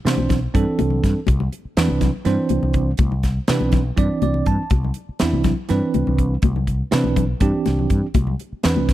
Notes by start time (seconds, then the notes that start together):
0.05 C3 E3 C4 D4 C5, snare, closed hi-hat
0.16 B1, high conga
0.29 kick, snare, closed hi-hat, low conga
0.54 G2 E3 C4 D4 A4, kick, closed hi-hat
0.68 muted fretless electric bass stroke
0.79 C2, closed hi-hat, high conga
0.90 low conga
1.04 G2, kick, snare, closed hi-hat
1.27 C2, kick, closed hi-hat, high conga
1.40 low conga
1.52 closed hi-hat, low conga
1.65 muted fretless electric bass stroke
1.77 E2 E3 C4 D4 B4, snare, closed hi-hat
1.88 C2, high conga
2.01 kick, snare, closed hi-hat, low conga
2.25 G2 E3 C4 D4 C5, snare, closed hi-hat
2.49 C2, closed hi-hat, high conga
2.63 C2, low conga
2.74 kick, closed hi-hat
2.97 C2, kick, closed hi-hat, high conga, low conga
3.12 low conga
3.23 kick, snare, closed hi-hat
3.48 C3 E3 C4 D4 B4, snare, closed hi-hat
3.60 B1, high conga, low conga
3.72 kick, snare, closed hi-hat, low conga
3.97 G2 E3 C4 D4 D5, kick, closed hi-hat, low conga
4.11 muted fretless electric bass stroke
4.22 C2 D5, closed hi-hat, high conga
4.34 low conga
4.46 G2 A5, kick, closed hi-hat
4.70 C2, kick, closed hi-hat, high conga
4.84 low conga
4.94 closed hi-hat, low conga
5.09 muted fretless electric bass stroke
5.19 E2 E3 C4 D4 E4, snare, closed hi-hat
5.33 C2, high conga
5.44 kick, snare, closed hi-hat, low conga
5.69 G2 E3 C4 D4 B4, snare, closed hi-hat
5.94 C2, closed hi-hat, high conga
6.07 C2, low conga
6.18 kick, closed hi-hat
6.42 C2, kick, closed hi-hat, high conga
6.56 low conga
6.67 kick, closed hi-hat, low conga
6.91 C3 E3 C4 D4 B4, snare, closed hi-hat
7.04 B1, high conga
7.16 kick, closed hi-hat, low conga
7.40 G2 E3 C4 D4 G4, kick, closed hi-hat
7.54 muted fretless electric bass stroke
7.66 C2, snare, closed hi-hat, high conga
7.79 low conga
7.90 G2, kick, closed hi-hat
8.14 C2, kick, closed hi-hat, high conga
8.27 low conga
8.39 closed hi-hat, low conga
8.52 muted fretless electric bass stroke
8.63 E2 E3 C4 D4 B4, snare, closed hi-hat
8.77 C2, high conga
8.89 kick, snare, closed hi-hat